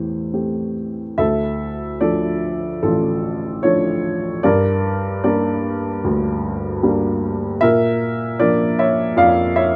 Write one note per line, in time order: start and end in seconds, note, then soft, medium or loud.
0.00 1.15 E2 soft
0.00 1.15 A2 medium
0.00 0.33 A3 soft
0.00 0.34 C4 soft
0.00 0.34 G4 soft
0.00 0.73 C5 medium
0.33 1.02 A3 soft
0.33 1.02 C4 soft
0.33 1.02 G4 soft
1.18 4.40 D2 medium
1.18 1.98 A4 medium
1.18 2.03 E5 medium
2.01 2.67 F3 soft
2.01 2.67 A3 soft
2.01 2.67 D4 soft
2.01 2.80 A4 medium
2.01 2.86 D5 medium
2.83 4.40 A1 medium
2.83 3.61 F4 medium
2.83 3.63 A4 medium
3.63 4.28 F3 soft
3.63 4.29 A3 soft
3.63 4.29 D4 soft
3.63 4.41 A4 medium
3.63 4.46 C#5 medium
4.43 7.57 G2 medium
4.43 5.21 A#4 medium
4.43 5.20 D5 medium
5.24 5.88 G3 soft
5.24 5.88 A#3 soft
5.24 5.89 D4 medium
5.24 7.19 A#4 medium
5.24 7.18 D5 medium
6.04 7.58 D2 medium
6.83 7.46 G3 soft
6.83 7.46 A#3 soft
6.83 7.46 D4 medium
7.61 9.76 A#2 medium
7.61 8.36 A#4 medium
7.61 8.35 E5 loud
8.39 9.01 F3 medium
8.39 9.02 A#3 soft
8.39 9.02 D4 soft
8.39 8.76 A#4 medium
8.39 8.79 D5 medium
8.79 9.14 C#5 medium
8.79 9.18 E5 medium
9.16 9.76 F2 medium
9.16 9.53 D5 medium
9.16 9.57 F5 medium
9.56 9.76 C#5 medium
9.56 9.76 E5 medium